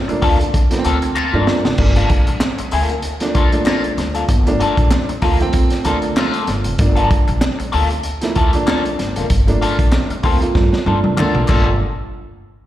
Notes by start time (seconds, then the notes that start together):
0.08 F3 A3 A#3 D4, muted clean electric guitar stroke, muted upright bass stroke, closed hi-hat
0.22 D2 A#3 F4 A4, kick, open hi-hat
0.40 muted clean electric guitar stroke, closed hi-hat
0.54 muted clean electric guitar stroke, kick, closed hi-hat
0.70 F3 A3 A#3 B3, snare, closed hi-hat
0.79 C4
0.84 D2 A#3 F4 A4, closed hi-hat
1.02 muted clean electric guitar stroke, closed hi-hat
1.15 A#3 F4 A4, clap
1.33 G2 F3 A3 A#3 D4
1.47 muted clean electric guitar stroke, snare
1.65 F1, muted clean electric guitar stroke, snare
1.78 G1 F3 A3 A#3 D4, muted clean electric guitar stroke, kick, crash
1.95 A#3 F4 A4, closed hi-hat
2.09 muted clean electric guitar stroke, kick, closed hi-hat
2.27 A#1, muted clean electric guitar stroke, closed hi-hat
2.40 muted clean electric guitar stroke, snare, clap
2.58 muted clean electric guitar stroke, muted upright bass stroke, closed hi-hat
2.71 D2 A#3 F4 A4, open hi-hat
2.89 muted clean electric guitar stroke, closed hi-hat
3.02 closed hi-hat
3.20 F3 A3 A#3 D4, muted clean electric guitar stroke, snare, closed hi-hat
3.35 D2 A#3 F4 A4, kick, closed hi-hat
3.52 F3 A3 A#3 D4, muted clean electric guitar stroke, closed hi-hat
3.66 A#3 F4 A4, snare, clap
3.84 muted upright bass stroke, closed hi-hat
3.97 D2, muted clean electric guitar stroke, snare, closed hi-hat
4.15 A#3 F4 A4, closed hi-hat
4.29 G1, kick, closed hi-hat
4.46 F3 A3 A#3 D4, closed hi-hat
4.60 A#3 F4 A4, closed hi-hat
4.77 A#1, kick, closed hi-hat
4.91 muted clean electric guitar stroke, snare, clap
5.08 muted upright bass stroke, muted clean electric guitar stroke, closed hi-hat
5.22 D2 F3 A3 A#3 F4 A4, kick, open hi-hat
5.39 F3 A3 A#3 C4, muted clean electric guitar stroke, closed hi-hat
5.53 muted clean electric guitar stroke, kick, closed hi-hat
5.70 snare, closed hi-hat
5.85 D2 F3 A3 A#3 D4 F4 A4, closed hi-hat
6.02 muted clean electric guitar stroke, closed hi-hat
6.16 F3 A3 A#3 F4 A4, snare, clap
6.33 closed hi-hat
6.47 G1, muted clean electric guitar stroke, snare, closed hi-hat
6.64 F1, muted clean electric guitar stroke, closed hi-hat
6.78 G1 F3 A3 A#3 D4, muted clean electric guitar stroke, kick, closed hi-hat
6.96 A#3 F4 A4, closed hi-hat
7.11 muted clean electric guitar stroke, kick, closed hi-hat
7.28 A#1, muted clean electric guitar stroke, closed hi-hat
7.41 muted clean electric guitar stroke, snare, clap
7.59 muted clean electric guitar stroke, muted upright bass stroke, closed hi-hat
7.72 D2 A#3 F4 A4, open hi-hat
7.90 muted clean electric guitar stroke, closed hi-hat
8.03 closed hi-hat
8.21 F3 A3 A#3 E4, muted clean electric guitar stroke, snare, closed hi-hat
8.35 D2 A#3 F4 A4, kick, closed hi-hat
8.53 F3 A3 A#3 D4, muted clean electric guitar stroke, closed hi-hat
8.67 A#3 F4 A4, snare, clap
8.85 closed hi-hat
8.99 G1, muted clean electric guitar stroke, snare, closed hi-hat
9.16 F1 A#3 F4 A4, closed hi-hat
9.30 G1, kick, closed hi-hat
9.47 F3 A3 A#3 D4, closed hi-hat
9.61 A#3 F4 A4, closed hi-hat
9.79 A#1, kick, closed hi-hat
9.92 muted clean electric guitar stroke, snare, clap
10.10 muted upright bass stroke, muted clean electric guitar stroke, closed hi-hat
10.23 D2 F3 A3 A#3 C4 F4 A4, kick, open hi-hat
10.41 F3 A3 A#3 F4, muted clean electric guitar stroke, closed hi-hat
10.55 G2, muted clean electric guitar stroke, kick, snare
10.73 snare
10.86 G2 F3 A3 A#3 D4 F4 A4, high tom
11.04 C2, muted clean electric guitar stroke, high tom
11.17 D2 F3 A3 A#3 D4 F4 A4, clap, mid tom
11.35 A#1, mid tom
11.48 G1 F3 A3 A#3 D4 F4 A4, kick, clap, crash